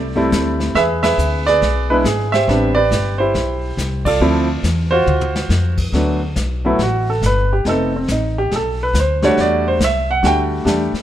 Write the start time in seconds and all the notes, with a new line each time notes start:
Already playing: C2 A4 C5 D5
0.16 G3 A3 C4 E4
0.32 D2, snare, hi-hat pedal
0.60 snare
0.75 E2 G#4 B4 E5, brush sweep, snare
1.03 G#4 B4 E5, snare, ride
1.18 D2, hi-hat pedal
1.47 G#4 B4 D5, snare
1.61 B1, brush sweep, snare
1.90 G#3 B3 D4 E4 B4
2.04 G#1 G#4, snare, hi-hat pedal
2.32 G4 C5 E5, snare
2.48 A1 G3 B3 C4 D4, brush sweep, snare
2.75 G4 B4 D5
2.91 G1, snare, hi-hat pedal
3.18 E4 G4 C5
3.34 B1, brush sweep, snare
3.77 C2, snare, hi-hat pedal
4.05 F4 A4 D5, kick, ride
4.20 D2 F3 A3 C4 E4, brush sweep
4.63 E2, snare, hi-hat pedal
4.91 F4 F#4 C5
5.07 D2, mid tom
5.21 mid tom
5.36 snare
5.49 F2, snare, hi-hat pedal
5.77 kick, crash
5.93 D2 F#3 A3 B3 D4, brush sweep, snare
6.36 B1, snare, hi-hat pedal
6.65 F#3 A3 B3 E4
6.79 A1, brush sweep, snare
6.83 F#4
7.10 A4
7.22 G1, snare, hi-hat pedal
7.26 B4
7.53 G4
7.65 F1 A3 B3 C4 D#4, brush sweep, snare
7.69 A4
7.96 C4
8.08 A1 D#4, snare, hi-hat pedal
8.38 G4
8.51 B1 G#4, brush sweep, snare
8.56 A4
8.83 B4
8.94 D2, snare, hi-hat pedal
9.00 C5
9.22 G3 A3 D4 F#4 C#5, snare
9.37 E2 D5, brush sweep, snare
9.68 C5
9.79 C2, snare, hi-hat pedal
9.84 E5
10.11 F#5
10.23 D2 G3 A3 D4 F#4 G5, brush sweep, snare
10.65 E2 G3 A3 D4 G4, snare, hi-hat pedal
10.93 muted upright bass stroke, snare